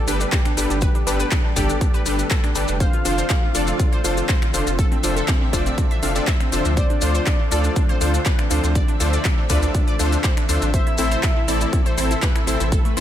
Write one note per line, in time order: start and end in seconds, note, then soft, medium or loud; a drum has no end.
0.00 10.70 D3 medium
0.00 2.76 G3 medium
0.00 10.70 A3 medium
0.00 2.76 B3 medium
0.00 2.76 G4 medium
0.08 0.25 G1 medium
0.08 0.15 D4 medium
0.08 0.29 D4 medium
0.08 0.29 G4 medium
0.08 0.29 A4 medium
0.08 0.29 B4 loud
0.08 open hi-hat loud
0.08 maracas medium
0.20 0.28 D4 medium
0.20 closed hi-hat medium
0.20 maracas medium
0.32 0.40 G4 medium
0.32 kick loud
0.32 clap loud
0.32 closed hi-hat medium
0.32 maracas soft
0.45 0.52 D4 medium
0.45 finger snap medium
0.45 closed hi-hat soft
0.57 0.66 G1 loud
0.57 0.65 D4 medium
0.57 0.79 D4 medium
0.57 0.79 G4 medium
0.57 0.79 A4 medium
0.57 0.79 B4 medium
0.57 open hi-hat loud
0.57 maracas medium
0.70 0.87 G1 medium
0.70 0.77 D4 medium
0.70 closed hi-hat medium
0.70 maracas medium
0.81 0.90 B4 loud
0.81 kick loud
0.81 closed hi-hat medium
0.81 maracas soft
0.95 1.02 D4 medium
0.95 closed hi-hat soft
1.07 1.24 G1 loud
1.07 1.28 D4 loud
1.07 1.14 D4 medium
1.07 1.28 G4 medium
1.07 1.28 A4 medium
1.07 1.28 B4 loud
1.07 open hi-hat loud
1.07 maracas medium
1.20 1.27 B4 medium
1.20 closed hi-hat medium
1.20 maracas medium
1.31 1.39 D4 medium
1.31 kick loud
1.31 clap loud
1.31 closed hi-hat medium
1.31 maracas soft
1.45 1.51 D4 medium
1.56 1.74 G1 medium
1.56 2.03 D4 medium
1.56 1.64 G4 loud
1.56 2.03 G4 medium
1.56 2.03 A4 medium
1.56 2.03 D5 loud
1.56 kick medium
1.56 open hi-hat loud
1.56 maracas loud
1.69 1.76 D4 medium
1.69 closed hi-hat medium
1.69 maracas soft
1.81 1.89 D4 medium
1.81 kick loud
1.81 closed hi-hat medium
1.81 maracas soft
1.94 2.01 B4 medium
1.94 closed hi-hat soft
2.06 2.23 G1 medium
2.06 2.28 D4 medium
2.06 2.14 D4 medium
2.06 2.28 G4 medium
2.06 2.28 A4 medium
2.06 2.28 B4 loud
2.06 open hi-hat loud
2.06 maracas loud
2.19 2.26 D4 medium
2.19 closed hi-hat medium
2.19 maracas medium
2.30 2.38 A4 medium
2.30 kick loud
2.30 clap loud
2.30 closed hi-hat medium
2.30 maracas soft
2.44 2.51 D4 medium
2.44 finger snap medium
2.44 closed hi-hat soft
2.55 2.64 G1 loud
2.55 2.77 D4 medium
2.55 2.63 D4 medium
2.55 2.77 G4 medium
2.55 2.77 A4 medium
2.55 2.77 B4 medium
2.55 open hi-hat loud
2.55 maracas medium
2.68 2.85 F1 medium
2.68 2.75 D4 medium
2.68 closed hi-hat medium
2.68 maracas medium
2.80 10.70 F3 medium
2.80 10.70 C4 medium
2.80 4.77 F4 medium
2.80 2.88 C5 loud
2.80 3.70 F5 loud
2.80 kick loud
2.80 closed hi-hat medium
2.80 maracas soft
2.93 3.00 F4 medium
2.93 closed hi-hat soft
3.05 3.22 F1 medium
3.05 3.27 D4 loud
3.05 3.27 F4 medium
3.05 3.13 F4 medium
3.05 3.27 A4 medium
3.05 3.27 C5 loud
3.05 open hi-hat loud
3.05 maracas medium
3.18 3.25 C5 medium
3.18 closed hi-hat medium
3.18 maracas medium
3.30 3.38 F4 medium
3.30 kick loud
3.30 clap loud
3.30 closed hi-hat medium
3.30 maracas soft
3.43 3.50 F4 medium
3.55 3.72 F1 medium
3.55 4.01 D4 medium
3.55 4.01 F4 medium
3.55 4.01 A4 medium
3.55 3.62 A4 medium
3.55 4.01 D5 loud
3.55 open hi-hat loud
3.55 maracas loud
3.67 3.75 F4 medium
3.67 closed hi-hat medium
3.67 maracas medium
3.80 3.87 F4 medium
3.80 kick loud
3.80 closed hi-hat medium
3.80 maracas soft
3.93 3.99 C5 medium
3.93 closed hi-hat soft
4.04 4.22 F1 medium
4.04 4.26 D4 medium
4.04 4.26 F4 medium
4.04 4.12 F4 medium
4.04 4.26 A4 medium
4.04 4.26 C5 loud
4.04 open hi-hat loud
4.04 maracas loud
4.17 4.24 F4 medium
4.17 closed hi-hat medium
4.17 maracas medium
4.29 4.37 C5 medium
4.29 kick loud
4.29 clap loud
4.29 closed hi-hat medium
4.29 maracas soft
4.42 4.49 F4 medium
4.42 finger snap medium
4.42 closed hi-hat soft
4.54 4.63 F1 loud
4.54 4.76 D4 medium
4.54 4.61 F4 medium
4.54 4.76 F4 medium
4.54 4.76 A4 medium
4.54 4.76 C5 medium
4.54 open hi-hat loud
4.54 maracas medium
4.67 4.83 F1 medium
4.67 4.74 F4 medium
4.67 closed hi-hat soft
4.67 maracas medium
4.79 4.86 A4 loud
4.79 6.75 E5 medium
4.79 kick loud
4.79 closed hi-hat medium
4.79 maracas soft
4.92 4.99 C4 medium
4.92 closed hi-hat soft
5.03 5.21 F1 loud
5.03 5.11 C4 medium
5.03 5.25 D4 medium
5.03 5.25 F4 medium
5.03 5.25 A4 medium
5.03 5.25 C5 loud
5.03 open hi-hat loud
5.03 maracas medium
5.17 5.23 A4 medium
5.17 closed hi-hat medium
5.17 maracas medium
5.28 5.36 C4 medium
5.28 kick loud
5.28 clap loud
5.28 closed hi-hat medium
5.28 maracas soft
5.41 5.48 C4 medium
5.53 5.70 F1 medium
5.53 6.00 D4 medium
5.53 6.00 F4 medium
5.53 6.00 A4 medium
5.53 5.61 C5 loud
5.53 6.00 D5 loud
5.53 kick medium
5.53 open hi-hat loud
5.53 maracas loud
5.66 5.73 C4 medium
5.66 closed hi-hat soft
5.66 maracas medium
5.78 5.85 C4 medium
5.78 kick loud
5.78 closed hi-hat medium
5.78 maracas soft
5.91 5.98 E5 medium
5.91 closed hi-hat soft
6.03 6.20 F1 medium
6.03 6.10 C4 medium
6.03 6.13 D4 medium
6.03 6.13 F4 medium
6.03 6.13 A4 medium
6.03 6.13 F5 loud
6.03 open hi-hat loud
6.03 maracas medium
6.15 6.23 C4 medium
6.15 6.29 D4 medium
6.15 6.29 F4 medium
6.15 6.29 A4 medium
6.15 6.29 D5 loud
6.15 closed hi-hat medium
6.15 maracas medium
6.27 6.35 E5 loud
6.27 kick loud
6.27 clap loud
6.27 closed hi-hat medium
6.27 maracas soft
6.40 6.47 C4 medium
6.40 finger snap medium
6.40 closed hi-hat soft
6.52 6.61 F1 loud
6.52 6.60 C4 medium
6.52 6.74 D4 medium
6.52 6.74 F4 medium
6.52 6.74 A4 medium
6.52 6.74 C5 loud
6.52 open hi-hat loud
6.52 maracas medium
6.65 6.82 D2 medium
6.65 6.72 C4 medium
6.65 closed hi-hat soft
6.65 maracas medium
6.77 8.73 F4 medium
6.77 6.85 C5 loud
6.77 7.67 D5 loud
6.77 kick loud
6.77 closed hi-hat medium
6.77 maracas soft
6.90 6.97 D4 medium
6.90 closed hi-hat soft
7.01 7.19 D2 loud
7.01 7.23 D4 medium
7.01 7.09 D4 medium
7.01 7.24 F4 medium
7.01 7.24 A4 medium
7.01 7.24 C5 loud
7.01 open hi-hat loud
7.01 maracas loud
7.15 7.22 C5 loud
7.15 closed hi-hat soft
7.15 maracas medium
7.26 7.34 D4 medium
7.26 kick loud
7.26 clap loud
7.26 closed hi-hat medium
7.26 maracas soft
7.40 7.46 D4 medium
7.51 7.69 D2 medium
7.51 7.98 D4 medium
7.51 7.98 F4 medium
7.51 7.59 A4 medium
7.51 7.98 A4 medium
7.51 7.98 D5 loud
7.51 open hi-hat loud
7.51 maracas loud
7.64 7.71 D4 medium
7.64 closed hi-hat medium
7.64 maracas soft
7.76 7.84 D4 medium
7.76 kick loud
7.76 closed hi-hat medium
7.76 maracas soft
7.89 7.96 C5 loud
7.89 closed hi-hat soft
8.01 8.18 D2 medium
8.01 8.23 D4 medium
8.01 8.09 D4 medium
8.01 8.23 F4 medium
8.01 8.23 A4 medium
8.01 8.23 C5 loud
8.01 open hi-hat loud
8.01 maracas medium
8.14 8.21 D4 medium
8.14 closed hi-hat medium
8.14 maracas medium
8.26 8.33 B4 medium
8.26 kick loud
8.26 clap loud
8.26 closed hi-hat medium
8.26 maracas soft
8.39 8.46 D4 medium
8.39 finger snap medium
8.39 closed hi-hat soft
8.51 8.59 D2 loud
8.51 8.72 D4 medium
8.51 8.58 D4 medium
8.51 8.72 F4 medium
8.51 8.72 A4 medium
8.51 8.72 C5 medium
8.51 open hi-hat loud
8.51 maracas medium
8.64 8.80 D2 medium
8.64 8.70 D4 medium
8.64 closed hi-hat soft
8.64 maracas medium
8.75 8.83 D5 loud
8.75 13.00 E5 medium
8.75 kick loud
8.75 closed hi-hat medium
8.75 maracas soft
8.88 8.95 D4 medium
8.88 closed hi-hat soft
9.00 9.17 D2 loud
9.00 9.22 D4 loud
9.00 9.08 D4 medium
9.00 9.22 F4 medium
9.00 9.22 A4 medium
9.00 9.22 C5 loud
9.00 open hi-hat loud
9.00 maracas medium
9.13 9.20 D5 medium
9.13 closed hi-hat medium
9.13 maracas medium
9.25 9.33 D4 medium
9.25 kick loud
9.25 clap loud
9.25 closed hi-hat medium
9.25 maracas soft
9.38 9.45 D4 medium
9.49 9.67 D2 medium
9.49 9.96 D4 medium
9.49 9.96 F4 medium
9.49 9.96 A4 medium
9.49 9.57 B4 medium
9.49 9.96 D5 loud
9.49 kick medium
9.49 open hi-hat loud
9.49 maracas medium
9.62 9.70 D4 medium
9.62 closed hi-hat soft
9.62 maracas soft
9.74 9.82 D4 medium
9.74 kick loud
9.74 closed hi-hat medium
9.74 maracas soft
9.88 9.94 D5 loud
9.88 closed hi-hat soft
9.99 10.17 D2 medium
9.99 10.07 D4 medium
9.99 10.21 D4 loud
9.99 10.21 F4 medium
9.99 10.21 A4 medium
9.99 10.21 C5 loud
9.99 open hi-hat loud
9.99 maracas medium
10.12 10.19 D4 medium
10.12 closed hi-hat medium
10.12 maracas soft
10.24 10.32 C5 medium
10.24 kick loud
10.24 clap loud
10.24 closed hi-hat medium
10.24 maracas soft
10.37 10.44 D4 medium
10.37 finger snap medium
10.37 closed hi-hat soft
10.49 10.58 D2 loud
10.49 10.57 D4 medium
10.49 10.71 D4 medium
10.49 10.71 F4 medium
10.49 10.71 A4 medium
10.49 10.71 C5 medium
10.49 open hi-hat loud
10.49 maracas medium
10.62 10.78 A1 medium
10.62 10.69 D4 medium
10.62 closed hi-hat medium
10.62 maracas medium
10.74 13.00 C3 medium
10.74 13.00 E3 medium
10.74 13.00 A3 medium
10.74 12.70 A4 medium
10.74 10.81 C5 loud
10.74 11.63 E5 loud
10.74 kick loud
10.74 closed hi-hat medium
10.74 maracas soft
10.87 10.94 E4 medium
10.87 closed hi-hat soft
10.98 11.16 A1 loud
10.98 11.20 C4 medium
10.98 11.20 E4 medium
10.98 11.06 E4 medium
10.98 11.20 A4 medium
10.98 11.20 C5 loud
10.98 open hi-hat loud
10.98 maracas medium
11.11 11.18 C5 loud
11.11 closed hi-hat medium
11.11 maracas medium
11.23 11.31 E4 medium
11.23 kick loud
11.23 clap loud
11.23 closed hi-hat medium
11.23 maracas soft
11.36 11.43 E4 medium
11.48 11.65 A1 medium
11.48 11.95 C4 medium
11.48 11.95 E4 medium
11.48 11.95 A4 medium
11.48 11.56 A4 medium
11.48 11.95 D5 loud
11.48 open hi-hat loud
11.48 maracas medium
11.61 11.68 E4 medium
11.61 closed hi-hat medium
11.61 maracas medium
11.73 11.80 E4 medium
11.73 kick loud
11.73 closed hi-hat medium
11.73 maracas soft
11.86 11.93 C5 loud
11.86 closed hi-hat soft
11.98 12.15 A1 medium
11.98 12.19 C4 medium
11.98 12.19 E4 medium
11.98 12.05 E4 medium
11.98 12.19 A4 medium
11.98 12.19 C5 loud
11.98 open hi-hat loud
11.98 maracas medium
12.11 12.18 E4 medium
12.11 closed hi-hat medium
12.11 maracas soft
12.22 12.30 B4 loud
12.22 kick loud
12.22 clap loud
12.22 closed hi-hat medium
12.22 maracas soft
12.35 12.42 E4 medium
12.35 finger snap medium
12.35 closed hi-hat soft
12.47 12.56 A1 loud
12.47 12.69 C4 medium
12.47 12.55 E4 medium
12.47 12.69 E4 medium
12.47 12.69 A4 medium
12.47 12.69 C5 medium
12.47 open hi-hat loud
12.47 maracas medium
12.60 12.77 A1 medium
12.60 12.67 E4 medium
12.60 closed hi-hat medium
12.60 maracas medium
12.72 12.80 A4 loud
12.72 13.00 B4 medium
12.72 kick loud
12.72 closed hi-hat medium
12.72 maracas soft
12.85 12.92 A3 medium
12.85 closed hi-hat soft
12.97 13.00 A1 loud
12.97 13.00 A3 medium
12.97 13.00 C4 medium
12.97 13.00 E4 medium
12.97 13.00 A4 medium
12.97 13.00 C5 loud
12.97 open hi-hat loud
12.97 maracas medium